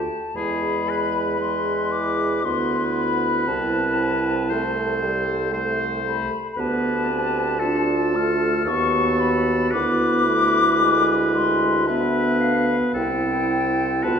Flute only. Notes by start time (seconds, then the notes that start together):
Already playing: A5
0.36 B5
1.42 C6
1.92 D6
2.45 C6
2.97 B5
3.48 A5
6.07 B5
6.53 B5
6.60 A5
8.15 F6
8.68 C#6
9.20 B5
9.72 D6
11.34 C6
11.88 E5
12.41 F5
12.95 G5
14.04 A5